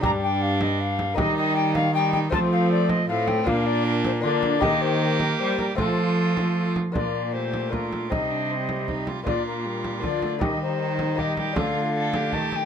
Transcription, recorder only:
0.04 A#5
0.23 G5
0.41 F5
0.62 D#5
0.80 F5
1.18 D#5
1.37 D#5
1.56 G5
1.74 F5
1.94 G5
2.13 G5
2.33 A5
2.52 F5
2.71 D5
2.89 D#5
3.08 F5
3.27 G5
3.46 F5
3.66 D5
3.85 A#4
4.05 C5
4.23 D5
4.62 D#5
4.81 C5
5.21 A#4
5.39 C5
5.59 A#4
5.79 A4
6.95 D5
7.33 C5
7.72 A#4
8.11 D#5
9.27 D5
9.47 A#4
10.03 D5
10.42 D#5
10.62 C5
11.19 D#5 F5
11.57 F5
12.33 A5
12.52 G5 A5

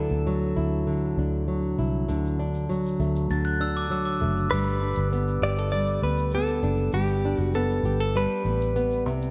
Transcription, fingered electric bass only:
0.11 D2
0.57 D2
1.17 D2
1.79 C2
2.09 D2
3.00 D2
3.30 D2
4.22 F#1
4.52 G1
4.97 G1
5.42 G1
6.03 D2
6.63 F#1
6.93 G1
7.38 F#1
7.83 G1
8.45 A1
9.06 C2

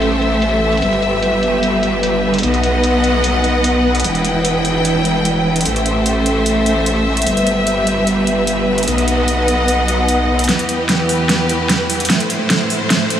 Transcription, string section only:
Already playing: A3 A4 C5 E5
0.82 G3 G4 B4
2.43 B3 D#5 F#5
4.04 E3 E4 G5
5.65 A3 A4 C5 E5
7.27 G3 G4 B4
8.88 B3 D#5 F#5
10.49 E2 E3 G4 B4
12.10 A2 A3 E4 C5

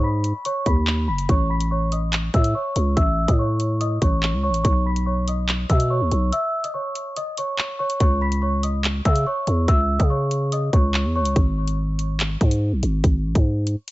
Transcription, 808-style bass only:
Already playing: G#2
0.66 D#2
1.08 F#1
1.29 A1
2.34 A2
2.76 C#2
2.97 A1
3.28 A2
4.02 A1
4.33 C#2
4.49 A1
4.65 B1
5.70 B2
6.01 D#2
6.12 B1
8.00 C#2
9.05 C#3
9.47 E2
9.68 C#2
10.00 C#3
10.73 C#2
11.05 E2
11.20 C#2
11.36 G#1
12.41 G#2
12.72 B1
12.83 G#1
13.04 G#1
13.25 A1
13.35 G#2

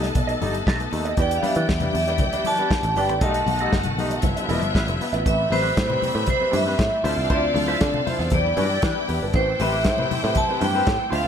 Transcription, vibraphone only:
1.22 G5
1.38 F5
1.48 E5
1.97 E5
2.47 A5
2.98 G5
3.21 A5
5.27 E5
5.52 C5
6.30 C5
6.56 E5
7.34 D5
8.08 C5
8.34 D5
9.36 C5
9.61 E5
10.37 A5
10.64 G5
11.15 F5

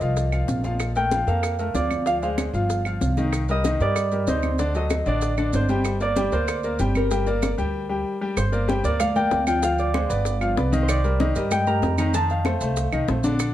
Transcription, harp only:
Already playing: A#4 C5 D#5
0.97 G5
1.28 F5
1.75 D5
2.07 F5
2.23 F5
3.51 D#5
3.82 D5
4.29 C5
4.76 D#5
5.08 D5
5.55 C5
6.02 D5
6.33 C5
6.97 A#4
8.37 C5
8.85 D5
9.00 F5
9.16 G5
9.47 G5
9.64 F5
9.79 D5
10.83 C5
10.89 D5
11.37 D#5
11.52 G5
11.67 A#5
11.99 A#5
12.15 A5
12.31 F5

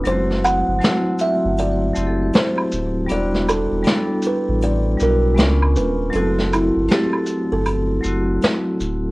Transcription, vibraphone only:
0.04 F#3 G#3 C4
0.09 A3 E4 F#4
0.79 F#3 A3 C4
0.85 E4 F#4
1.93 F#3 A3 C4
1.99 E4 G4
2.07 A4
3.06 G3 B3 D4
3.11 E4 F#4
3.82 G3 B3 D4
3.88 E4 A4
4.97 G3 B3 D4
5.03 E4 F#4
5.34 G#3 B3 C#4
5.40 D4 F4
6.10 F#3 A3 C4
6.16 E4 F#4
6.89 A3 C4 E4
6.94 A4
8.01 F#3 A3 C4
8.06 E4 F#4

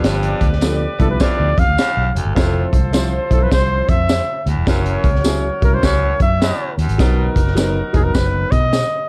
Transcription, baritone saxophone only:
0.05 G2
1.21 F2
1.79 E2
2.16 D2
2.35 F2
4.47 E2
4.67 F#2
5.83 F#2
6.42 E2
6.79 F#2
7.00 B2

